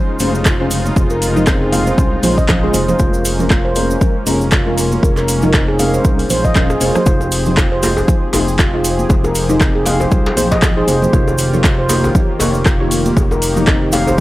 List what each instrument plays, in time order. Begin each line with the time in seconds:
Already playing: analog synth pad C#3 G#3 D#4 F4
0.19 analog synth bass F1, synth stab G#3 C#4 F4 C5, open hi-hat, high conga, cabasa
0.35 cabasa
0.45 handpan F4, kick, cross-stick, clap, cabasa
0.60 synth stab G#3 C#4 F4 C5, handpan F4
0.71 open hi-hat, cabasa
0.85 high conga, cabasa
0.96 analog synth bass F1, synth stab G#3 C#4 F4 C5, kick, cabasa
1.10 handpan A#4, cabasa
1.22 open hi-hat, cabasa
1.36 synth stab G#3 C#4 F4 C5, handpan D#4, low conga, cabasa
1.47 kick, cross-stick, clap, cabasa
1.62 handpan G#4
1.72 synth stab G#3 C#4 F4 C5, handpan F5, open hi-hat, high conga, cabasa
1.87 handpan C5, cabasa
1.98 analog synth bass C2, synth stab G#3 C#4 F4 C5, kick, cabasa
2.23 analog synth bass A#1, synth stab G#3 C#4 F4 C5, handpan C5, open hi-hat, high conga, low conga, cabasa
2.38 handpan D#5, kick, cabasa
2.49 kick, cross-stick, clap, low conga, cabasa
2.63 synth stab G#3 C#4 F4 C5, handpan G#4
2.74 analog synth bass F1, handpan C5, open hi-hat, high conga, cabasa
2.88 handpan C5, high conga, low conga, cabasa
2.99 analog synth bass F1, synth stab G#3 C#4 F4 A#4, analog synth pad A#3 C#4, handpan F4, kick, cabasa
3.14 cabasa
3.25 open hi-hat, cabasa
3.39 synth stab G#3 C#4 F4 A#4, low conga, cabasa
3.50 handpan F4, kick, cross-stick, clap, high conga, cabasa
3.65 handpan C5
3.76 synth stab G#3 C#4 F4 A#4, open hi-hat, high conga, cabasa
3.91 cabasa
4.01 synth stab G#3 C#4 F4 A#4, kick, low conga, cabasa
4.26 analog synth bass F1, synth stab G#3 C#4 F4 A#4, open hi-hat, high conga, cabasa
4.41 cabasa
4.52 handpan F4, kick, cross-stick, clap, cabasa
4.66 synth stab G#3 C#4 F4 A#4, handpan F4
4.78 open hi-hat, cabasa
4.92 high conga, cabasa
5.03 analog synth bass F1, synth stab G#3 C#4 F4 A#4, kick, cabasa
5.17 handpan A#4, clap, cabasa
5.28 open hi-hat, cabasa
5.42 synth stab G#3 C#4 F4 A#4, handpan D#4, low conga, cabasa
5.54 handpan C4, kick, cross-stick, clap, cabasa
5.68 handpan G#4, cross-stick
5.79 synth stab G#3 C#4 F4 A#4, handpan F5, open hi-hat, high conga, cabasa
5.94 handpan C5, cabasa
6.05 analog synth bass C2, synth stab G#3 C#4 F4 A#4, kick, swell, cabasa
6.19 open hi-hat, cabasa
6.30 analog synth bass A#1, handpan C5, open hi-hat, high conga, low conga, cabasa
6.44 handpan D#5, kick, cabasa
6.55 analog synth bass D#1, synth stab G#3 C#4 F4 A#4, kick, cross-stick, clap, low conga, cabasa
6.70 handpan G#4, cross-stick, cabasa
6.80 analog synth bass F1, synth stab G#3 C#4 F4 C#5, handpan C5, open hi-hat, high conga, cabasa
6.95 handpan C5, cross-stick, high conga, low conga, cabasa
7.06 analog synth bass F1, analog synth pad F3 C4 G4 G#4, synth stab G#3 D#4 F4 C5, handpan F4, kick, djembe tone, cabasa
7.21 djembe tone, cabasa
7.32 open hi-hat, cabasa
7.45 synth stab G#3 D#4 F4 C5, low conga, cabasa
7.57 handpan F4, kick, cross-stick, clap, cabasa
7.72 handpan C5
7.83 synth stab G#3 D#4 F4 C5, open hi-hat, djembe slap, high conga, cabasa
7.97 djembe tone, cabasa
8.08 synth stab G#3 D#4 F4 C5, kick, low conga, cabasa
8.33 analog synth bass F1, synth stab G#3 D#4 F4 C5, open hi-hat, djembe slap, high conga, djembe tone, cabasa
8.48 cabasa
8.59 handpan F4, kick, cross-stick, clap, cabasa
8.74 synth stab G#3 D#4 F4 C5, handpan F4
8.84 open hi-hat, cabasa
8.99 high conga, cabasa
9.09 analog synth bass F1, synth stab G#3 D#4 F4 C5, kick, djembe tone, cabasa
9.24 handpan A#4, djembe tone, cabasa
9.35 open hi-hat, cabasa
9.49 synth stab G#3 D#4 F4 C5, handpan D#4, low conga, cabasa
9.60 handpan C4, kick, cross-stick, clap, high conga, cabasa
9.75 handpan G#4
9.86 synth stab G#3 D#4 F4 C5, handpan F5, open hi-hat, djembe slap, high conga, cabasa
10.00 handpan C5, djembe tone, cabasa
10.11 analog synth bass C2, synth stab G#3 D#4 F4 C5, kick, cabasa
10.26 djembe slap
10.37 analog synth bass A#1, synth stab G#3 D#4 F4 C5, handpan C5, open hi-hat, high conga, low conga, cabasa
10.52 handpan D#5, kick, djembe slap, cabasa
10.62 kick, cross-stick, clap, djembe tone, low conga, cabasa
10.77 synth stab G#3 D#4 F4 C5, handpan G#4
10.88 analog synth bass F1, handpan C5, open hi-hat, high conga, djembe tone, cabasa
11.02 handpan C5, high conga, low conga, cabasa
11.13 analog synth bass F1, analog synth pad D#3 A#3 F4, synth stab A#3 D#4 G4 C#5, handpan F4, kick, djembe tone, cabasa
11.28 djembe tone, cabasa
11.38 open hi-hat, cabasa
11.53 synth stab A#3 D#4 G4 C#5, low conga, cabasa
11.64 handpan F4, kick, cross-stick, clap, high conga, cabasa
11.79 handpan C5
11.89 synth stab A#3 D#4 G4 C#5, open hi-hat, djembe slap, high conga, cabasa
12.04 djembe tone, cabasa
12.15 synth stab A#3 D#4 G4 C#5, kick, low conga, cabasa
12.39 analog synth bass F1, synth stab A#3 D#4 G4 C#5, open hi-hat, djembe slap, djembe tone, high conga, cabasa
12.54 cabasa
12.66 handpan F4, kick, cross-stick, clap, high conga, cabasa
12.80 synth stab A#3 D#4 G4 C#5, handpan F4
12.91 open hi-hat, cabasa
13.06 high conga, cabasa
13.17 analog synth bass F1, synth stab A#3 D#4 G4 C#5, analog synth pad D#4, kick, djembe tone, cabasa
13.31 handpan A#4, djembe tone, cabasa
13.42 open hi-hat, cabasa
13.56 synth stab A#3 D#4 G4 C#5, handpan D#4, low conga, cabasa
13.67 handpan C4, kick, cross-stick, clap, high conga, cabasa
13.82 handpan G4
13.92 synth stab A#3 D#4 G4 C#5, handpan F5, open hi-hat, djembe slap, high conga, cabasa
14.07 handpan C5, djembe tone, cabasa